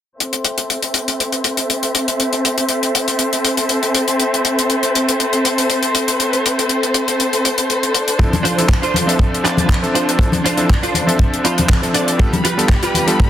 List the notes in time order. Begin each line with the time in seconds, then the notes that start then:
0.19 C4 A4 C5 E5, closed hi-hat
0.33 closed hi-hat
0.45 closed hi-hat
0.58 closed hi-hat
0.70 closed hi-hat
0.82 closed hi-hat
0.94 closed hi-hat
1.08 closed hi-hat
1.20 closed hi-hat
1.32 closed hi-hat
1.44 closed hi-hat
1.57 closed hi-hat
1.70 closed hi-hat
1.83 closed hi-hat
1.95 closed hi-hat
2.08 closed hi-hat
2.20 closed hi-hat
2.33 closed hi-hat
2.45 closed hi-hat
2.58 closed hi-hat
2.69 closed hi-hat
2.83 closed hi-hat
2.95 closed hi-hat
3.08 closed hi-hat
3.19 closed hi-hat
3.33 closed hi-hat
3.45 closed hi-hat
3.57 closed hi-hat
3.69 closed hi-hat
3.83 closed hi-hat
3.95 closed hi-hat
4.08 closed hi-hat
4.20 closed hi-hat
4.34 closed hi-hat
4.45 closed hi-hat
4.59 closed hi-hat
4.70 closed hi-hat
4.83 closed hi-hat
4.95 closed hi-hat
5.09 closed hi-hat
5.20 closed hi-hat
5.33 closed hi-hat
5.45 closed hi-hat
5.58 closed hi-hat
5.70 closed hi-hat
5.83 closed hi-hat
5.95 closed hi-hat
6.08 closed hi-hat
6.20 closed hi-hat
6.33 closed hi-hat
6.46 closed hi-hat
6.59 closed hi-hat
6.69 closed hi-hat
6.83 closed hi-hat
6.94 closed hi-hat
7.08 closed hi-hat
7.20 closed hi-hat
7.33 closed hi-hat
7.45 closed hi-hat
7.58 closed hi-hat
7.70 closed hi-hat
7.83 closed hi-hat
7.94 D4, closed hi-hat
8.08 closed hi-hat
8.19 F3 C4 D4 E4 A4, kick, closed hi-hat
8.33 closed hi-hat, high conga
8.43 D4 F4 C5, closed hi-hat
8.58 F3 C4 D4 E4 A4, closed hi-hat
8.69 kick, clap, closed hi-hat
8.82 D4 F4 C5, closed hi-hat
8.94 closed hi-hat, high conga
9.07 F3 C4 D4 A4 E5, closed hi-hat
9.19 kick, closed hi-hat
9.34 closed hi-hat
9.43 F3 C4 D4 F4 D5 E5 B5, clap, closed hi-hat
9.57 closed hi-hat, high conga
9.69 kick, clap, closed hi-hat
9.82 F3 C4 D4 A4 E5, closed hi-hat
9.94 D4 F4 C5, closed hi-hat
10.09 closed hi-hat
10.18 F3 C4 D4 E4 A4, kick, closed hi-hat
10.32 closed hi-hat, high conga
10.44 D4 F4 C5, closed hi-hat
10.57 F3 C4 D4 E4 A4, closed hi-hat
10.69 kick, clap, closed hi-hat
10.83 D4 F4 C5, closed hi-hat
10.94 closed hi-hat, high conga
11.06 F3 C4 D4 A4 E5, closed hi-hat
11.19 kick, closed hi-hat
11.34 closed hi-hat
11.44 F3 C4 D4 F4 C5 E5 B5, closed hi-hat
11.58 closed hi-hat, high conga
11.69 kick, clap, closed hi-hat
11.82 F3 C4 D4 A4 E5, closed hi-hat
11.94 D4 F4 D5, closed hi-hat
12.08 closed hi-hat
12.19 G3 B3 D4 F4 G4 A4 B5, kick, closed hi-hat
12.33 closed hi-hat, high conga
12.44 F4 G4 B4, closed hi-hat
12.57 G3 B3 D4 F4 A4, closed hi-hat
12.69 kick, clap, closed hi-hat
12.83 F4 G4 B4, closed hi-hat
12.94 closed hi-hat, high conga
13.07 G3 B3 D4 F4 A4, closed hi-hat
13.20 kick, closed hi-hat